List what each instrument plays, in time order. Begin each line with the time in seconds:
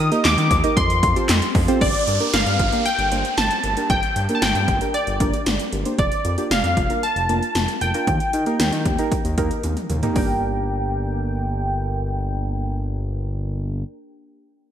Already playing: analog polysynth D#6
0.00 analog synth bass D#3
0.12 synth keys A#3 D#4 G4 A#4 D#5, closed hi-hat
0.24 analog synth bass D#2, analog polysynth D6, snare, clap, closed hi-hat
0.38 analog synth bass D#3, closed hi-hat
0.51 analog synth bass D#2, synth keys A#4 C5, kick, closed hi-hat
0.64 synth keys A#3 D#4 G4 A#4 D#5, closed hi-hat
0.77 analog synth bass F2, analog polysynth C6, kick, closed hi-hat
0.90 analog synth bass F2, closed hi-hat
1.03 analog synth bass F2, synth keys A4 C5, kick, closed hi-hat
1.16 synth keys C4 F4 G4 A4 C5, closed hi-hat
1.29 analog synth bass F2, snare, clap, closed hi-hat
1.42 closed hi-hat
1.55 analog synth bass F2, synth keys A4 C5, kick, open hi-hat
1.68 synth keys C4 F4 G4 A4 C5, closed hi-hat
1.81 analog synth bass G1, analog polysynth D5, kick, closed hi-hat, downlifter
1.94 closed hi-hat
2.07 analog synth bass G2, synth keys G4 A#4, closed hi-hat
2.20 synth keys A#3 D4 G4 A#4, closed hi-hat
2.33 analog synth bass G1, analog polysynth F5, snare, closed hi-hat
2.46 analog synth bass G2, closed hi-hat
2.59 analog synth bass G1, synth keys G4 A#4, kick, closed hi-hat
2.72 synth keys A#3 D4 G4 A#4, closed hi-hat
2.86 analog polysynth G5, closed hi-hat
2.98 analog synth bass G1, closed hi-hat
3.11 analog synth bass G1, synth keys A#3 D4 G4 C5, closed hi-hat
3.25 closed hi-hat
3.37 analog synth bass G1, analog polysynth A5, snare, closed hi-hat
3.51 closed hi-hat
3.64 analog synth bass G1, synth keys G4 A#4, closed hi-hat
3.77 synth keys A#3 D4 G4 A#4, closed hi-hat
3.90 analog synth bass G1, analog polysynth G5, kick, closed hi-hat
4.03 closed hi-hat
4.16 analog synth bass G2, synth keys G4 C5, closed hi-hat
4.29 synth keys A#3 D4 G4 A#4, closed hi-hat
4.35 analog polysynth A5
4.42 analog synth bass G1, analog polysynth G5, snare, closed hi-hat
4.55 analog synth bass G2, closed hi-hat
4.68 analog synth bass G1, synth keys G4 A#4, kick, closed hi-hat
4.81 synth keys A#3 D4 G4 A#4, closed hi-hat
4.94 analog polysynth D5, closed hi-hat
5.07 analog synth bass G1, closed hi-hat
5.20 analog synth bass G1, synth keys A#3 D4 G4 A#4, kick, closed hi-hat
5.34 closed hi-hat
5.46 analog synth bass G1, snare, closed hi-hat
5.60 closed hi-hat
5.73 analog synth bass G1, synth keys G4 A#4, closed hi-hat
5.85 synth keys A#3 D4 G4 C5, closed hi-hat
5.98 analog synth bass F1, analog polysynth D5, kick, closed hi-hat
6.12 closed hi-hat
6.25 analog synth bass F2, synth keys F4 A#4, closed hi-hat
6.38 synth keys A#3 D4 F4 G4, closed hi-hat
6.51 analog synth bass F1, analog polysynth F5, snare, closed hi-hat
6.64 analog synth bass F2, closed hi-hat
6.77 analog synth bass F1, synth keys F4 A4, kick, closed hi-hat
6.90 synth keys A#3 D4 F4 A#4, closed hi-hat
7.03 analog polysynth A5, closed hi-hat
7.16 analog synth bass F1, closed hi-hat
7.29 analog synth bass F1, synth keys A#3 D4 F4 A#4, closed hi-hat
7.43 closed hi-hat
7.55 analog synth bass F1, snare, closed hi-hat
7.68 closed hi-hat
7.81 analog synth bass F1, synth keys F4 A#4, analog polysynth G5, closed hi-hat
7.94 synth keys A#3 D4 F4 A#4, closed hi-hat
8.07 analog synth bass D#2, kick, closed hi-hat
8.20 closed hi-hat
8.33 analog synth bass D#3, synth keys G4 A#4, closed hi-hat
8.46 synth keys A#3 D#4 G4 A#4, closed hi-hat
8.59 analog synth bass D#2, snare, closed hi-hat
8.72 analog synth bass D#3, closed hi-hat
8.85 analog synth bass D#2, synth keys G4 A#4, kick, closed hi-hat
8.98 synth keys A#3 D#4 G4 A#4, closed hi-hat
9.12 kick, closed hi-hat
9.25 analog synth bass D#2, closed hi-hat
9.38 analog synth bass D#2, synth keys A#3 D#4 G4 A#4, kick, closed hi-hat
9.51 closed hi-hat
9.63 analog synth bass D#2, closed hi-hat, high tom
9.77 closed hi-hat, mid tom
9.90 analog synth bass D#2, synth keys G4 A#4, closed hi-hat, mid tom
10.03 synth keys A#3 D#4 G4 A#4, closed hi-hat, floor tom
10.14 analog synth bass G1, synth keys A#3 D4 G4, analog polysynth G5, kick, open hi-hat
10.18 synth keys A#4